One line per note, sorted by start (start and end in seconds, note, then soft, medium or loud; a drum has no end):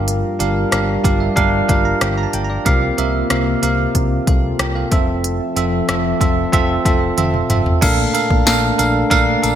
0.00 0.22 G1 medium
0.00 0.68 G2 medium
0.00 2.63 G3 medium
0.00 0.33 D4 medium
0.00 4.88 F4 medium
0.00 0.33 G4 medium
0.00 0.34 A#4 medium
0.00 2.63 A#4 medium
0.00 0.34 F5 medium
0.08 closed hi-hat medium
0.39 0.63 G1 medium
0.39 0.69 D4 medium
0.39 0.69 G4 medium
0.39 0.69 A#4 medium
0.39 0.69 F5 medium
0.39 closed hi-hat medium
0.71 0.96 G1 medium
0.71 1.01 D4 medium
0.71 1.01 G4 medium
0.71 1.01 A#4 medium
0.71 1.02 F5 medium
0.71 cross-stick loud
0.71 closed hi-hat medium
1.04 1.28 G1 medium
1.04 1.33 D4 medium
1.04 1.33 G4 medium
1.04 1.34 A#4 medium
1.04 1.19 D5 medium
1.04 1.34 F5 medium
1.04 kick medium
1.04 closed hi-hat medium
1.20 1.36 E5 medium
1.36 1.60 G1 medium
1.36 1.65 D4 loud
1.36 1.66 G4 loud
1.36 1.66 A#4 medium
1.36 1.66 F5 loud
1.36 kick medium
1.36 closed hi-hat medium
1.68 1.92 G1 medium
1.68 1.98 D4 medium
1.68 1.98 G4 medium
1.68 1.98 A#4 medium
1.68 1.98 F5 medium
1.68 1.84 G5 medium
1.68 kick medium
1.68 closed hi-hat medium
1.85 2.00 A#5 medium
2.01 2.25 G1 loud
2.01 2.21 G5 medium
2.01 cross-stick loud
2.01 closed hi-hat medium
2.18 2.33 D5 medium
2.18 2.33 A#5 medium
2.23 2.43 A5 medium
2.33 2.57 G1 medium
2.33 2.49 A#4 medium
2.33 2.49 G5 medium
2.33 closed hi-hat medium
2.44 2.64 A#5 medium
2.50 2.81 F4 soft
2.50 2.80 D5 medium
2.65 2.89 C2 medium
2.65 3.59 C3 medium
2.65 4.90 C3 medium
2.65 4.90 A#3 medium
2.65 2.95 C4 loud
2.65 2.95 G4 medium
2.65 2.95 A#4 medium
2.65 2.95 F5 loud
2.65 kick medium
2.65 closed hi-hat medium
2.98 3.21 C2 loud
2.98 3.27 C4 medium
2.98 3.27 G4 medium
2.98 3.27 A#4 medium
2.98 3.27 E5 medium
2.98 closed hi-hat medium
3.30 3.54 C2 medium
3.30 3.59 C4 medium
3.30 3.59 G4 medium
3.30 3.60 A#4 medium
3.30 3.60 F5 medium
3.30 cross-stick loud
3.30 closed hi-hat medium
3.62 3.86 C2 medium
3.62 3.91 C4 medium
3.62 3.92 G4 medium
3.62 3.92 A#4 medium
3.62 3.92 F5 medium
3.62 closed hi-hat medium
3.95 4.18 C2 loud
3.95 kick medium
3.95 closed hi-hat medium
4.27 4.51 C2 medium
4.27 4.58 A4 medium
4.27 4.58 F5 medium
4.27 kick medium
4.27 closed hi-hat medium
4.59 4.83 C2 medium
4.59 4.75 A#4 medium
4.59 4.75 G5 medium
4.59 cross-stick loud
4.59 closed hi-hat medium
4.75 4.91 A4 medium
4.75 5.06 F5 medium
4.91 5.38 F1 medium
4.91 7.79 F3 medium
4.91 5.49 C4 medium
4.91 5.50 F4 medium
4.91 5.50 A4 medium
4.91 7.79 A4 medium
4.91 7.79 E5 medium
4.91 5.50 E5 medium
4.91 kick medium
4.91 closed hi-hat medium
5.24 closed hi-hat medium
5.56 5.80 F1 medium
5.56 5.85 C4 medium
5.56 5.85 F4 medium
5.56 5.85 A4 medium
5.56 5.86 E5 medium
5.56 closed hi-hat medium
5.88 6.12 F1 medium
5.88 6.17 C4 medium
5.88 6.18 F4 medium
5.88 6.18 A4 medium
5.88 6.18 E5 medium
5.88 cross-stick loud
5.88 closed hi-hat medium
6.20 6.44 F1 medium
6.20 6.49 C4 medium
6.20 6.50 F4 medium
6.20 6.50 A4 medium
6.20 6.50 E5 medium
6.20 kick medium
6.20 closed hi-hat medium
6.52 6.76 F1 loud
6.52 6.82 C4 loud
6.52 6.82 F4 medium
6.52 6.82 A4 medium
6.52 6.82 E5 loud
6.52 kick medium
6.52 closed hi-hat medium
6.85 7.09 F1 medium
6.85 7.14 C4 medium
6.85 7.14 F4 medium
6.85 7.14 A4 medium
6.85 7.15 E5 medium
6.85 kick medium
6.85 closed hi-hat medium
7.17 7.41 F1 medium
7.17 7.46 C4 medium
7.17 7.47 F4 medium
7.17 7.47 A4 medium
7.17 7.47 E5 medium
7.17 closed hi-hat medium
7.17 high tom medium
7.34 mid tom medium
7.49 7.73 F1 medium
7.49 7.79 C4 medium
7.49 7.79 F4 medium
7.49 7.79 A4 medium
7.49 7.79 E5 medium
7.49 closed hi-hat medium
7.49 mid tom medium
7.66 floor tom medium
7.81 8.05 A#1 loud
7.81 8.75 A#2 medium
7.81 9.55 A3 medium
7.81 9.55 A#3 medium
7.81 8.11 D4 loud
7.81 9.55 D4 medium
7.81 8.11 A4 medium
7.81 8.11 A#4 medium
7.81 8.11 F5 loud
7.81 kick loud
7.81 closed hi-hat medium
7.81 crash medium
7.81 tambourine soft
8.14 8.43 D4 medium
8.14 8.43 A4 medium
8.14 8.43 A#4 medium
8.14 8.44 F5 medium
8.14 closed hi-hat medium
8.14 tambourine medium
8.31 8.42 A#1 loud
8.31 kick medium
8.46 8.70 A#1 medium
8.46 8.75 D4 medium
8.46 8.75 A4 medium
8.46 8.76 A#4 medium
8.46 8.76 F5 medium
8.46 snare loud
8.46 closed hi-hat medium
8.46 tambourine medium
8.78 9.02 A#1 loud
8.78 9.07 D4 medium
8.78 9.08 A4 medium
8.78 9.08 A#4 medium
8.78 9.08 F5 medium
8.78 closed hi-hat medium
8.78 tambourine soft
9.10 9.34 A#1 loud
9.10 9.40 D4 loud
9.10 9.40 A4 loud
9.10 9.40 A#4 loud
9.10 9.40 F5 loud
9.10 kick medium
9.10 closed hi-hat medium
9.10 tambourine soft
9.42 9.55 A#1 loud
9.42 9.55 D4 medium
9.42 9.55 A4 medium
9.42 9.55 A#4 medium
9.42 9.55 F5 loud
9.42 closed hi-hat medium
9.42 tambourine soft